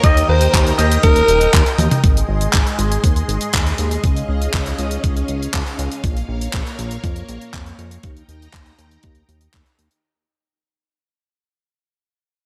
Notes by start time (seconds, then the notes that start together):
Already playing: A#4
0.03 D#2 D#3 D#4 G4 A#4 D#5 G5 D#6, kick, closed hi-hat
0.17 closed hi-hat
0.28 D#2 C5
0.41 closed hi-hat
0.54 D#2, kick, clap, closed hi-hat
0.67 closed hi-hat
0.78 D#2 D#3 D#4 G4 A#4 D#5, closed hi-hat
0.92 closed hi-hat
1.03 D#1 A#4, kick, closed hi-hat
1.16 closed hi-hat
1.28 D#1, closed hi-hat
1.41 closed hi-hat
1.54 D#2, kick, clap, closed hi-hat
1.66 closed hi-hat
1.78 D#2, closed hi-hat, high tom
1.91 closed hi-hat, mid tom
2.04 G#1 G#3 G#4 D#5 C6, kick, closed hi-hat
2.17 closed hi-hat
2.29 G#1
2.41 closed hi-hat
2.53 G#1, kick, clap, closed hi-hat
2.67 closed hi-hat
2.79 G#1, closed hi-hat
2.92 closed hi-hat
3.04 D#2, kick, closed hi-hat
3.16 closed hi-hat
3.28 G#1, closed hi-hat
3.41 closed hi-hat
3.53 D#2, kick, clap, closed hi-hat
3.67 closed hi-hat
3.78 D#2, closed hi-hat
3.91 closed hi-hat
4.04 C#2 C#4 F5, kick, closed hi-hat
4.17 closed hi-hat
4.29 C#2
4.42 closed hi-hat
4.54 C#2, kick, clap, closed hi-hat
4.66 closed hi-hat
4.79 C#2, closed hi-hat
4.91 closed hi-hat
5.04 C#2, kick, closed hi-hat
5.17 closed hi-hat
5.28 C#2, closed hi-hat
5.43 closed hi-hat
5.54 C#2, kick, clap, closed hi-hat
5.67 closed hi-hat
5.79 C#2, closed hi-hat
5.92 closed hi-hat
6.04 A#1 A#3 A#4 C#5, kick, closed hi-hat
6.17 closed hi-hat
6.29 A#1
6.41 closed hi-hat
6.53 A#1, kick, clap, closed hi-hat
6.67 closed hi-hat
6.79 A#1, closed hi-hat
6.91 closed hi-hat
7.04 F2, kick, closed hi-hat
7.16 closed hi-hat
7.29 A#1, closed hi-hat
7.42 closed hi-hat
7.54 F2, kick, clap, closed hi-hat
7.66 closed hi-hat
7.79 F2, closed hi-hat
7.91 closed hi-hat
8.03 D#2 D#4 D#5 G5 A#5, kick, closed hi-hat
8.17 closed hi-hat
8.29 D#2, closed hi-hat
8.42 closed hi-hat
8.54 D#2, kick, clap, closed hi-hat
8.66 closed hi-hat
8.79 D#2, closed hi-hat
8.91 closed hi-hat
9.03 D#2, kick, closed hi-hat
9.15 closed hi-hat
9.29 D#2, closed hi-hat
9.41 closed hi-hat
9.54 D#2, kick, clap, closed hi-hat
9.66 closed hi-hat
9.79 D#2, closed hi-hat
9.91 closed hi-hat